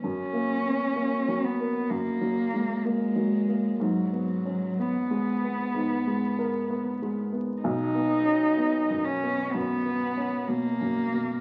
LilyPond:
<<
  \new Staff \with { instrumentName = "Cello" } { \time 4/4 \key gis \minor \tempo 4 = 63 cis'4. b8 ais4 gis4 | fis4 b2~ b8 r8 | dis'4. cis'8 b4 ais4 | }
  \new Staff \with { instrumentName = "Grand piano" } { \time 4/4 \key gis \minor \tuplet 3/2 { fis,8 ais8 b8 ais8 fis8 ais'8 fis,8 fis8 gis8 ais8 fis8 ais8 } | \tuplet 3/2 { gis,8 b8 cis'8 b8 gis8 b8 gis,8 gis8 ais'8 b8 gis8 b8 } | \tuplet 3/2 { b,,8 b8 cis'8 b8 fis,8 b8 fis,8 b8 cis'8 b,8 fis,8 b,8 } | }
>>